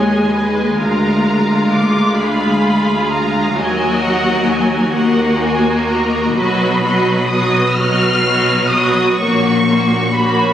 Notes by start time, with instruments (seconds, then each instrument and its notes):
Already playing: double bass section D#2, cello section D#2, viola section G#3 G#4, violin section C#5 D#5 G#5
0.32 violin section B4
0.80 double bass section D2, cello section D2, viola section F4, violin section A#4 F5 A#5
1.73 violin section D6
2.19 violin section G#4 B5
3.10 violin section A#5
3.55 double bass section D#2, cello section D#2, viola section F#3 F#4, violin section A#4 D#5 G#5
4.00 violin section F#5
4.47 violin section G#5
4.92 viola section A#3 F#4, violin section A#4 D#5 F#5
5.41 violin section G#5
5.88 violin section A#5
6.33 double bass section B1, cello section B2, viola section F#3 F#4, violin section B4 D#5 B5
6.82 viola section F#3 F#4, violin section B4 D#5
7.27 viola section F#3 F#4, violin section B4 D#6
7.31 violin section D#5
7.75 double bass section B1, cello section B2, viola section F#3 F#4, violin section B4 D#5 F6
8.22 viola section F#3 F#4, violin section B4 D#5
8.69 viola section F#3 F#4, violin section B4 D#6
8.74 violin section D#5
9.17 double bass section A#1, cello section A#2, viola section A#3 F#4, violin section F#4 C#5 C#6
9.66 viola section A#3 F#4, violin section F#4 C#5
10.12 viola section A#3 F#4, violin section F#4 C#5 B5